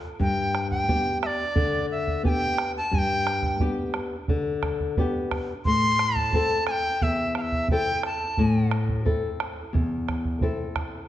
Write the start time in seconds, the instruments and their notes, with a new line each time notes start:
0.20 nylon-string guitar G2, quena G5, bombo low
0.55 bombo rim
0.71 quena G5, bombo low
0.88 nylon-string guitar B3 D4 G4, bombo low
1.22 quena E5, bombo rim
1.26 quena D5
1.55 nylon-string guitar D3, bombo low
1.91 quena E5
2.07 bombo low
2.23 nylon-string guitar B3 D4 G4, quena G#5, bombo low
2.29 quena G5
2.58 bombo rim
2.77 quena A5
2.91 nylon-string guitar G2, quena G#5, bombo low
2.98 quena G5
3.27 bombo rim
3.43 bombo low
3.60 nylon-string guitar B3 D4 G4, bombo low
3.94 bombo rim
4.28 nylon-string guitar D3, bombo low
4.63 bombo rim, bombo low
4.80 bombo low
4.97 nylon-string guitar B3 D4 G4, bombo low
5.31 bombo rim, bombo low
5.65 nylon-string guitar A2, quena C6, bombo low
5.99 bombo rim
6.16 quena A5, bombo low
6.33 nylon-string guitar C4 E4 A4, bombo low
6.67 quena G#5, bombo rim
6.71 quena G5
7.02 nylon-string guitar E2, quena E5, bombo low
7.35 quena F5, bombo rim
7.41 quena E5
7.52 bombo low
7.68 nylon-string guitar C4 E4 A4, quena G5, bombo low
8.03 quena A5, bombo rim
8.37 nylon-string guitar A2, bombo low
8.71 bombo rim
8.89 bombo low
9.05 nylon-string guitar C4 E4 A4, bombo low
9.40 bombo rim
9.73 nylon-string guitar E2, bombo low
10.09 bombo rim, bombo low
10.25 bombo low
10.41 nylon-string guitar C4 E4 A4, bombo low
10.76 bombo rim, bombo low